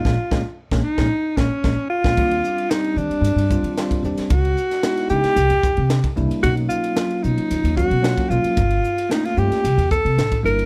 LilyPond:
<<
  \new Staff \with { instrumentName = "Alto saxophone" } { \time 4/4 \key ees \dorian \tempo 4 = 113 f'4 r8 ees'4 des'4 f'8~ | f'4 ees'8 d'2 r8 | ges'4. g'2 r8 | fis'8 f'4 dis'4 fis'4 f'8~ |
f'4 ees'16 f'16 g'4 a'4 bes'8 | }
  \new Staff \with { instrumentName = "Tine electric piano" } { \time 4/4 \key ees \dorian <aes bes des'>16 r16 <aes bes des'>16 r8 <aes bes des'>16 r16 <aes bes des'>16 r8 <aes bes des'>16 r16 <aes bes des'>16 r8 <aes bes des'>16 | <g c' d' f'>4 <g c' d' g'>4. <g c' d' f'>8 <g c' d' f'>8 <g c' d' g'>8 | r4 <aes ces' ees' fes'>8 <aes ces' ees' fes'>8 r4. <g bes d' e'>8 | <fis ais cis' dis'>4 <fis ais cis' f'>4. <fis ais cis' fis'>8 <fis ais cis' f'>8 <fis ais cis' f'>8 |
r4 <a bes des' f'>8 <a bes des' f'>8 r4. <g bes d' e'>8 | }
  \new Staff \with { instrumentName = "Upright bass" } { \clef bass \time 4/4 \key ees \dorian bes,,16 r16 bes,,16 r8 bes,,16 r16 bes,,16 r8 bes,,16 r16 bes,,16 r8 bes,,16 | ees,8 r4 ees16 r16 g,16 g,8 ees8 r16 ees,16 r16 | des,8 r4 des16 r16 c,16 e,8 c8 r16 c,16 r16 | b,,8 r4 b,16 r16 dis,16 dis,8 b,8 r16 b,,16 r16 |
g,,8 r4 g,16 r16 c,16 e,8 c16 a,,8 g,,8 | }
  \new DrumStaff \with { instrumentName = "Drums" } \drummode { \time 4/4 <bd sn>8 <bd sn>8 r16 <bd sn>8 <bd sn>16 r8 <bd sn>8 <bd sn>8. <bd sn>16 | <cymc bd>16 cymr16 hhp16 cymr16 <hhp cymr sn>16 cymr16 hhp16 cymr16 <hhp cymr>16 cymr16 <hhp bd>16 cymr16 <hhp cymr sn>16 <bd cymr>16 hhp16 <cymr sn>16 | <hhp bd cymr>16 cymr16 hhp16 <cymr sn>16 <hhp cymr sn>16 <cymr sn>16 hhp16 <cymr sn>16 <hhp cymr>16 cymr16 <hhp bd>16 cymr16 <hhp cymr sn>16 <bd cymr>16 hhp16 cymr16 | <hhp bd cymr>16 cymr16 hhp16 cymr16 <hhp cymr sn>16 cymr16 hhp16 cymr16 <hhp cymr>16 cymr16 <hhp bd>16 cymr16 <hhp cymr sn>16 <bd cymr>16 hhp16 cymr16 |
<hhp bd cymr>16 cymr16 hhp16 cymr16 <hhp cymr sn>16 <cymr sn>16 hhp16 <cymr sn>16 <hhp cymr>16 cymr16 <hhp bd>16 cymr16 <hhp cymr sn>16 <bd cymr>16 hhp16 cymr16 | }
>>